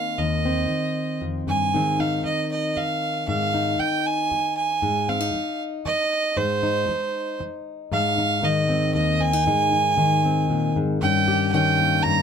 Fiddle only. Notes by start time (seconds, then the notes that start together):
Already playing: F5
0.18 D#5
1.49 G#5
2.00 F5
2.25 D#5
2.51 D#5
2.77 F5
3.28 F5
3.80 G5
4.06 G#5
4.57 G#5
5.09 F5
5.86 D#5
6.37 C5
7.93 F5
8.44 D#5
8.94 D#5
9.21 G#5
11.01 G5
11.52 G5
12.03 A#5